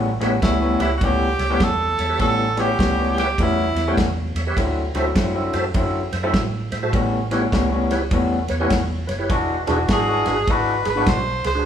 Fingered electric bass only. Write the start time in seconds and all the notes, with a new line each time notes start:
Already playing: A1
0.21 A1
0.43 C#2
0.79 C#2
1.01 C#2
1.39 C#2
1.60 E2
1.98 E2
2.19 A1
2.79 C#2
3.39 E2
3.75 E2
3.97 E2
4.35 E2
4.57 D2
4.94 D2
5.16 F#2
5.54 F#2
5.75 F#2
6.13 F#2
6.34 A2
6.72 A2
6.93 A1
7.52 C#2
8.12 E2
8.50 E2
8.70 E2
9.09 F#1
9.30 E1
9.68 E1
9.89 G#1
10.27 G#1
10.48 G#1
10.87 G#1
11.07 B1
11.45 C#2